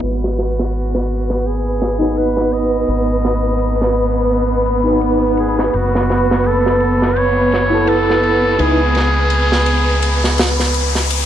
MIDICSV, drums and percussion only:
0, 0, Header, 1, 2, 480
1, 0, Start_track
1, 0, Tempo, 714286
1, 11, Time_signature, 4, 2, 24, 8
1, 7565, End_track
2, 0, Start_track
2, 0, Title_t, "Drums"
2, 11, Note_on_c, 9, 51, 79
2, 78, Note_off_c, 9, 51, 0
2, 162, Note_on_c, 9, 38, 43
2, 229, Note_off_c, 9, 38, 0
2, 252, Note_on_c, 9, 51, 48
2, 260, Note_on_c, 9, 38, 45
2, 319, Note_off_c, 9, 51, 0
2, 327, Note_off_c, 9, 38, 0
2, 399, Note_on_c, 9, 38, 47
2, 466, Note_off_c, 9, 38, 0
2, 491, Note_on_c, 9, 51, 69
2, 558, Note_off_c, 9, 51, 0
2, 636, Note_on_c, 9, 38, 42
2, 703, Note_off_c, 9, 38, 0
2, 730, Note_on_c, 9, 51, 50
2, 797, Note_off_c, 9, 51, 0
2, 873, Note_on_c, 9, 38, 39
2, 940, Note_off_c, 9, 38, 0
2, 971, Note_on_c, 9, 51, 64
2, 1038, Note_off_c, 9, 51, 0
2, 1212, Note_on_c, 9, 51, 55
2, 1220, Note_on_c, 9, 38, 44
2, 1279, Note_off_c, 9, 51, 0
2, 1288, Note_off_c, 9, 38, 0
2, 1453, Note_on_c, 9, 51, 72
2, 1520, Note_off_c, 9, 51, 0
2, 1592, Note_on_c, 9, 38, 33
2, 1659, Note_off_c, 9, 38, 0
2, 1690, Note_on_c, 9, 51, 64
2, 1757, Note_off_c, 9, 51, 0
2, 1929, Note_on_c, 9, 51, 70
2, 1996, Note_off_c, 9, 51, 0
2, 2169, Note_on_c, 9, 51, 54
2, 2182, Note_on_c, 9, 38, 34
2, 2236, Note_off_c, 9, 51, 0
2, 2249, Note_off_c, 9, 38, 0
2, 2411, Note_on_c, 9, 51, 70
2, 2478, Note_off_c, 9, 51, 0
2, 2564, Note_on_c, 9, 38, 38
2, 2631, Note_off_c, 9, 38, 0
2, 2651, Note_on_c, 9, 51, 56
2, 2718, Note_off_c, 9, 51, 0
2, 3132, Note_on_c, 9, 51, 57
2, 3199, Note_off_c, 9, 51, 0
2, 3368, Note_on_c, 9, 51, 79
2, 3435, Note_off_c, 9, 51, 0
2, 3610, Note_on_c, 9, 51, 60
2, 3678, Note_off_c, 9, 51, 0
2, 3755, Note_on_c, 9, 38, 39
2, 3822, Note_off_c, 9, 38, 0
2, 3854, Note_on_c, 9, 51, 66
2, 3921, Note_off_c, 9, 51, 0
2, 4001, Note_on_c, 9, 38, 43
2, 4068, Note_off_c, 9, 38, 0
2, 4095, Note_on_c, 9, 51, 48
2, 4101, Note_on_c, 9, 38, 40
2, 4162, Note_off_c, 9, 51, 0
2, 4168, Note_off_c, 9, 38, 0
2, 4241, Note_on_c, 9, 38, 43
2, 4309, Note_off_c, 9, 38, 0
2, 4327, Note_on_c, 9, 51, 71
2, 4395, Note_off_c, 9, 51, 0
2, 4477, Note_on_c, 9, 38, 39
2, 4545, Note_off_c, 9, 38, 0
2, 4572, Note_on_c, 9, 51, 63
2, 4639, Note_off_c, 9, 51, 0
2, 4720, Note_on_c, 9, 38, 36
2, 4787, Note_off_c, 9, 38, 0
2, 4812, Note_on_c, 9, 51, 82
2, 4879, Note_off_c, 9, 51, 0
2, 5054, Note_on_c, 9, 51, 55
2, 5064, Note_on_c, 9, 38, 44
2, 5121, Note_off_c, 9, 51, 0
2, 5131, Note_off_c, 9, 38, 0
2, 5291, Note_on_c, 9, 51, 85
2, 5358, Note_off_c, 9, 51, 0
2, 5443, Note_on_c, 9, 38, 31
2, 5510, Note_off_c, 9, 38, 0
2, 5533, Note_on_c, 9, 51, 65
2, 5600, Note_off_c, 9, 51, 0
2, 5773, Note_on_c, 9, 51, 81
2, 5840, Note_off_c, 9, 51, 0
2, 6013, Note_on_c, 9, 51, 54
2, 6024, Note_on_c, 9, 38, 34
2, 6080, Note_off_c, 9, 51, 0
2, 6091, Note_off_c, 9, 38, 0
2, 6250, Note_on_c, 9, 51, 82
2, 6317, Note_off_c, 9, 51, 0
2, 6397, Note_on_c, 9, 38, 41
2, 6464, Note_off_c, 9, 38, 0
2, 6492, Note_on_c, 9, 51, 58
2, 6559, Note_off_c, 9, 51, 0
2, 6736, Note_on_c, 9, 51, 81
2, 6803, Note_off_c, 9, 51, 0
2, 6883, Note_on_c, 9, 38, 37
2, 6950, Note_off_c, 9, 38, 0
2, 6975, Note_on_c, 9, 51, 61
2, 6985, Note_on_c, 9, 38, 82
2, 7042, Note_off_c, 9, 51, 0
2, 7052, Note_off_c, 9, 38, 0
2, 7121, Note_on_c, 9, 38, 34
2, 7188, Note_off_c, 9, 38, 0
2, 7218, Note_on_c, 9, 51, 57
2, 7286, Note_off_c, 9, 51, 0
2, 7361, Note_on_c, 9, 38, 33
2, 7428, Note_off_c, 9, 38, 0
2, 7462, Note_on_c, 9, 51, 80
2, 7529, Note_off_c, 9, 51, 0
2, 7565, End_track
0, 0, End_of_file